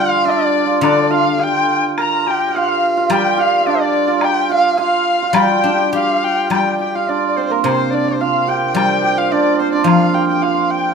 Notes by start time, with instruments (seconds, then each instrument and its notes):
Already playing: guzheng D3 G3, hammered dulcimer D4 G4
0.00 hammered dulcimer F4, dizi F5, erhu F5
0.25 hammered dulcimer D4, dizi D5, low woodblock
0.31 erhu D5
0.66 hammered dulcimer F4
0.81 guzheng D3, hammered dulcimer D4, dizi D5, high woodblock
0.87 erhu D5
1.10 hammered dulcimer F4, dizi F5
1.15 erhu F5
1.38 hammered dulcimer G4, dizi G5, low woodblock
1.44 erhu G5
1.98 hammered dulcimer A#4, dizi A#5, erhu A#5, high woodblock
2.26 hammered dulcimer G4, dizi G5
2.31 erhu G5
2.47 hammered dulcimer G4, dizi G5
2.55 hammered dulcimer F4, dizi F5, erhu F5, low woodblock
2.97 hammered dulcimer F4
3.10 guzheng G3, hammered dulcimer G4, dizi G5, erhu G5, high woodblock
3.38 hammered dulcimer F4, dizi F5, erhu F5
3.61 hammered dulcimer F4
3.66 hammered dulcimer D4, dizi D5, erhu D5, low woodblock
3.75 dizi C5
3.80 dizi D5
4.08 hammered dulcimer F4
4.21 hammered dulcimer G4, dizi G5, erhu G5, high woodblock
4.49 hammered dulcimer F4
4.54 erhu F5
4.77 hammered dulcimer F4, dizi F5, low woodblock
4.81 erhu F5
5.22 hammered dulcimer F4
5.33 guzheng G3, hammered dulcimer G4, dizi G5, high woodblock
5.38 erhu G5
5.44 hammered dulcimer G4
5.51 hammered dulcimer G4
5.58 hammered dulcimer G4
5.64 guzheng D4, hammered dulcimer G4
5.73 hammered dulcimer G4
5.82 hammered dulcimer G4
5.89 hammered dulcimer G4
5.93 guzheng G4, hammered dulcimer G4, dizi F5
5.98 erhu F5
6.03 hammered dulcimer G4
6.23 hammered dulcimer G4, erhu G5
6.50 guzheng G3, hammered dulcimer G4, dizi G5, erhu G5, high woodblock
6.80 hammered dulcimer G4, dizi G5, erhu G5
6.94 hammered dulcimer F4, dizi F5, erhu F5
7.08 hammered dulcimer D4, dizi D5, erhu D5
7.36 hammered dulcimer C4, dizi C5, erhu C5 D5
7.45 dizi A#4, erhu C5
7.50 hammered dulcimer A#3, erhu A#4
7.64 guzheng C3, hammered dulcimer C4, dizi C5, erhu C5, high woodblock
7.90 hammered dulcimer D4, dizi D5, erhu D5
8.08 erhu C5
8.19 hammered dulcimer F4, dizi F5, erhu F5
8.47 hammered dulcimer G4, dizi G5, erhu G5
8.75 guzheng G3, hammered dulcimer G4, dizi G5, erhu G5, high woodblock
9.04 hammered dulcimer G4, erhu G5
9.18 hammered dulcimer F4, dizi F5, erhu F5
9.32 hammered dulcimer D4, dizi D5, erhu D5
9.59 hammered dulcimer C4, erhu C5, dizi C5
9.72 hammered dulcimer D4, erhu D5, dizi D5
9.84 guzheng F3, hammered dulcimer F4, erhu F5, dizi F5, high woodblock
10.14 hammered dulcimer G4, erhu G5
10.28 hammered dulcimer G4, erhu G5, dizi G5
10.42 hammered dulcimer F4, erhu F5, dizi F5, low woodblock
10.71 erhu G5, dizi G5